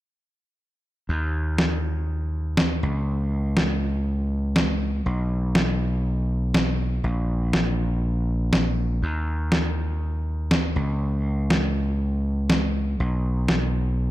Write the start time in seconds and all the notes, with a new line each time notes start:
1.09 D#2
1.58 snare
2.57 snare
2.83 C#2
3.57 snare
4.56 snare
5.06 B1
5.55 snare
6.54 snare
7.04 A#1
7.53 snare
8.53 snare
9.03 D#2
9.52 snare
10.51 snare
10.76 C#2
11.50 snare
12.50 snare
13.00 B1
13.48 snare